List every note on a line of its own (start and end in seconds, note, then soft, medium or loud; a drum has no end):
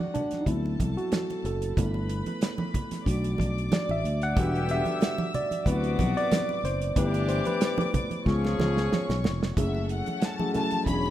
0.00 0.10 G3 soft
0.00 0.10 D4 soft
0.00 0.11 F#4 medium
0.00 0.44 F#4 medium
0.00 0.16 D5 loud
0.00 0.44 F#5 medium
0.14 0.26 D4 medium
0.14 closed hi-hat medium
0.14 low conga medium
0.31 snare soft
0.31 closed hi-hat soft
0.31 high conga soft
0.41 0.47 D#4 medium
0.46 0.75 D2 medium
0.46 1.40 F#3 soft
0.46 1.40 B3 soft
0.46 1.40 C4 soft
0.46 1.41 E4 medium
0.46 1.74 A4 medium
0.46 1.74 A5 medium
0.46 kick medium
0.46 closed hi-hat medium
0.46 muted conga soft
0.66 muted conga soft
0.80 0.95 C2 medium
0.80 kick medium
0.80 closed hi-hat medium
0.80 high conga medium
0.97 1.41 F#4 medium
0.97 closed hi-hat soft
1.12 snare loud
1.12 closed hi-hat medium
1.12 muted conga soft
1.12 high conga medium
1.30 closed hi-hat soft
1.30 muted conga soft
1.44 1.73 F#1 medium
1.44 3.03 A4 medium
1.44 closed hi-hat medium
1.62 closed hi-hat medium
1.76 2.21 G1 loud
1.76 2.70 A3 soft
1.76 2.71 B3 soft
1.76 2.71 E4 medium
1.76 3.04 B4 medium
1.76 3.04 B5 medium
1.76 kick loud
1.76 closed hi-hat medium
1.76 muted conga soft
1.76 low conga medium
1.94 muted conga soft
2.09 closed hi-hat medium
2.26 closed hi-hat soft
2.26 high conga medium
2.41 snare loud
2.41 closed hi-hat loud
2.41 muted conga soft
2.58 muted conga soft
2.58 high conga medium
2.74 kick medium
2.74 closed hi-hat medium
2.74 low conga medium
2.91 snare soft
2.91 closed hi-hat medium
2.91 high conga soft
3.06 3.35 B1 loud
3.06 4.32 A3 medium
3.06 4.32 D4 soft
3.06 4.33 F#4 medium
3.06 4.34 D5 medium
3.06 4.34 D6 medium
3.06 kick medium
3.06 closed hi-hat medium
3.06 muted conga soft
3.24 closed hi-hat soft
3.24 muted conga soft
3.38 3.68 B1 medium
3.38 kick medium
3.38 closed hi-hat medium
3.38 high conga medium
3.58 closed hi-hat soft
3.72 3.91 D5 medium
3.72 snare loud
3.72 closed hi-hat medium
3.72 muted conga soft
3.72 high conga medium
3.89 4.02 A1 medium
3.89 4.24 E5 loud
3.89 muted conga soft
4.04 4.33 D2 medium
4.04 closed hi-hat medium
4.22 4.71 F#5 loud
4.22 closed hi-hat medium
4.36 4.81 E1 loud
4.36 5.32 D3 medium
4.36 4.81 G3 soft
4.36 5.32 B3 medium
4.36 4.81 D4 soft
4.36 4.82 F#4 medium
4.36 5.32 G4 medium
4.36 5.64 E5 medium
4.36 5.64 E6 loud
4.36 kick loud
4.36 closed hi-hat medium
4.36 muted conga soft
4.36 low conga medium
4.55 closed hi-hat soft
4.69 5.37 E5 loud
4.69 closed hi-hat medium
4.85 closed hi-hat soft
4.85 high conga medium
5.01 snare loud
5.01 closed hi-hat medium
5.01 muted conga soft
5.18 muted conga soft
5.18 high conga medium
5.34 5.68 D5 medium
5.34 closed hi-hat medium
5.34 low conga medium
5.51 closed hi-hat medium
5.51 high conga medium
5.66 5.95 D2 loud
5.66 6.62 C3 medium
5.66 6.60 F#3 medium
5.66 6.62 B3 medium
5.66 6.60 B3 soft
5.66 6.60 C4 soft
5.66 6.60 E4 medium
5.66 6.62 F#4 medium
5.66 6.18 B4 medium
5.66 6.94 D5 medium
5.66 6.94 D6 medium
5.66 kick medium
5.66 closed hi-hat medium
5.66 muted conga soft
5.84 closed hi-hat soft
5.99 6.14 B1 loud
5.99 kick medium
5.99 closed hi-hat medium
5.99 high conga medium
6.17 6.61 D5 loud
6.17 closed hi-hat soft
6.32 snare loud
6.32 closed hi-hat medium
6.32 muted conga soft
6.32 high conga medium
6.49 muted conga soft
6.64 6.92 F#1 medium
6.64 6.95 C5 medium
6.64 closed hi-hat medium
6.82 closed hi-hat medium
6.96 7.40 G1 loud
6.96 7.92 E3 medium
6.96 7.41 A3 medium
6.96 7.41 B3 soft
6.96 7.92 D4 medium
6.96 7.42 E4 medium
6.96 7.92 G4 medium
6.96 7.30 B4 medium
6.96 8.24 D5 medium
6.96 8.24 D6 loud
6.96 kick loud
6.96 closed hi-hat medium
6.96 muted conga soft
6.96 low conga medium
7.14 closed hi-hat soft
7.14 muted conga soft
7.29 7.45 C5 medium
7.29 closed hi-hat medium
7.45 8.08 B4 medium
7.45 closed hi-hat soft
7.45 high conga medium
7.61 snare loud
7.61 closed hi-hat loud
7.61 muted conga soft
7.78 closed hi-hat soft
7.78 muted conga soft
7.78 high conga medium
7.94 kick medium
7.94 closed hi-hat medium
7.94 low conga medium
8.11 closed hi-hat soft
8.11 high conga medium
8.25 8.55 C#2 loud
8.25 9.22 F3 medium
8.25 9.19 G#3 medium
8.25 9.20 B3 soft
8.25 9.22 C#4 medium
8.25 9.20 F4 medium
8.25 9.22 G#4 medium
8.25 9.54 C#5 medium
8.25 9.54 C#6 medium
8.25 kick medium
8.25 snare soft
8.25 muted conga soft
8.45 snare medium
8.45 muted conga soft
8.59 8.87 C#2 medium
8.59 snare medium
8.59 high conga medium
8.77 snare medium
8.92 snare medium
8.92 high conga medium
9.09 9.22 B1 medium
9.09 snare medium
9.09 muted conga soft
9.24 9.53 F1 medium
9.24 snare loud
9.24 low conga medium
9.43 snare loud
9.56 10.01 F#1 loud
9.56 10.28 F#3 medium
9.56 10.28 A3 medium
9.56 10.84 C#4 medium
9.56 10.28 C#4 medium
9.56 10.28 E4 medium
9.56 10.28 G#4 medium
9.56 10.84 A4 medium
9.56 9.87 E5 medium
9.56 10.84 F#5 medium
9.56 kick loud
9.56 closed hi-hat medium
9.56 low conga medium
9.75 muted conga soft
9.89 10.21 F#5 medium
9.89 closed hi-hat medium
10.06 closed hi-hat soft
10.06 high conga medium
10.22 10.55 A5 medium
10.22 snare loud
10.22 closed hi-hat medium
10.22 muted conga soft
10.39 10.52 F#3 medium
10.39 10.52 A3 medium
10.39 10.53 C#4 medium
10.39 10.52 E4 medium
10.39 10.53 G#4 medium
10.39 muted conga soft
10.39 high conga medium
10.54 10.85 F#3 medium
10.54 10.86 A3 medium
10.54 10.85 C#4 medium
10.54 10.85 E4 medium
10.54 10.87 A4 medium
10.54 10.86 A5 loud
10.54 closed hi-hat medium
10.54 low conga medium
10.71 closed hi-hat soft
10.71 high conga soft
10.86 11.10 E1 medium
10.86 11.10 F#3 medium
10.86 11.10 C#4 medium
10.86 11.10 D4 medium
10.86 11.10 E4 medium
10.86 10.94 F#4 medium
10.86 11.10 C#5 medium
10.86 11.10 G#5 medium
10.86 11.10 B5 medium
10.86 kick medium
10.86 closed hi-hat medium
10.86 muted conga soft
10.93 11.10 G#4 medium
11.06 muted conga soft